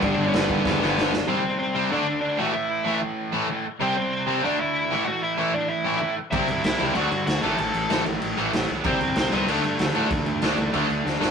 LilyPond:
<<
  \new Staff \with { instrumentName = "Lead electric guitar" } { \time 4/4 \key d \major \tempo 4 = 191 <d' d''>8. <cis' cis''>16 <b b'>2~ <b b'>8 r8 | <c' c''>4 <c' c''>4 <d' d''>4 <d' d''>8 <fis' fis''>8 | <e' e''>4. r2 r8 | <c' c''>8 <c' c''>4. <d' d''>8 <e' e''>4. |
<fis' fis''>8 <e' e''>4 <d' d''>8 <e' e''>4. r8 | <e' e''>4 <e' e''>4 <fis' fis''>4 <fis' fis''>8 <a' a''>8 | <a' a''>4. r2 r8 | <c' c''>4 <c' c''>8 <b b'>8 <a a'>2~ |
<a a'>2. r4 | }
  \new Staff \with { instrumentName = "Distorted electric guitar" } { \clef bass \time 4/4 \key d \major <g, d g>2 <g, d g>8 <g, d g>4 r8 | <c g c'>8 r4 <c g c'>8 <d a d'>8 r4 <a, e a>8 | r4 <a, e a>8 r4 <a, e a>8 r4 | <c g c'>8 r4 <c g c'>8 <d a d'>8 r4 <a, e a>8 |
r4 <a, e a>8 r4 <a, e a>8 r4 | <c g c'>8 r4 <c g c'>8 <d a d'>8 r4 <a, e a>8 | r4 <a, e a>8 r4 <a, e a>8 r4 | <c g c'>8 r4 <c g c'>8 <d a d'>8 r4 <d a d'>8 |
r4 <d a d'>8 r8 <d a d'>8 r4 <d a d'>8 | }
  \new Staff \with { instrumentName = "Distorted electric guitar" } { \clef bass \time 4/4 \key d \major <g, d g>2 <g, d g>8 <g, d g>4 r8 | <c g c'>8 r4 <c g c'>8 <d a d'>8 r4 <a, e a>8 | r4 <a, e a>8 r4 <a, e a>8 r4 | <c g c'>8 r4 <c g c'>8 <d a d'>8 r4 <a, e a>8 |
r4 <a, e a>8 r4 <a, e a>8 r4 | <c g c'>8 r4 <c g c'>8 <d a d'>8 r4 <a, e a>8 | r4 <a, e a>8 r4 <a, e a>8 r4 | <c g c'>8 r4 <c g c'>8 <d a d'>8 r4 <d a d'>8 |
r4 <d a d'>8 r8 <d a d'>8 r4 <d a d'>8 | }
  \new Staff \with { instrumentName = "Distorted electric guitar" } { \clef bass \time 4/4 \key d \major <g, d g>4 <g, d g>4. <g, d g>4 r8 | <c g c'>2 <d a d'>4. <a, e a>8~ | <a, e a>2. <a, e a>8 r8 | <c g c'>2 <d a d'>4. <a, e a>8~ |
<a, e a>2. <a, e a>8 r8 | <c g c'>2 <d a d'>4. <a, e a>8~ | <a, e a>2. <a, e a>8 r8 | <c g c'>2 <d a d'>2~ |
<d a d'>4. <d a d'>8 <d a d'>2 | }
  \new Staff \with { instrumentName = "Picked electric bass" } { \clef bass \time 4/4 \key d \major g,,8 g,,8 g,,8 g,8 e,8 g,,8 g,,4 | r1 | r1 | r1 |
r1 | c,8 c,8 c,8 cis,8 d,8 g,8 d,8 a,,8 | a,,8 a,,8 a,,8 a,,8 a,,8 a,,8 a,,8 b,,8 | c,8 c,8 c,8 c,8 d,8 g,8 d,8 a,8 |
d,8 d,8 d,8 d,8 d,8 d,8 d,8 g,,8 | }
  \new DrumStaff \with { instrumentName = "Drums" } \drummode { \time 4/4 <cymc bd>4 <cymc sn>8 bd8 <bd sn>8 sn8 sn8 sn8 | r4 r4 r4 r4 | r4 r4 r4 r4 | r4 r4 r4 r4 |
r4 r4 r4 r4 | <cymc bd>8 cymc8 <cymc sn>8 cymc8 cymc8 cymc8 <cymc sn>8 cymc8 | cymc8 cymc8 <cymc sn>8 cymc8 cymc8 cymc8 <cymc sn>8 cymc8 | <cymc bd>8 cymc8 <cymc sn>8 cymc8 cymc8 cymc8 <cymc sn>8 cymc8 |
<cymc bd>8 cymc8 <cymc sn>8 cymc8 cymc8 cymc8 sn8 sn8 | }
>>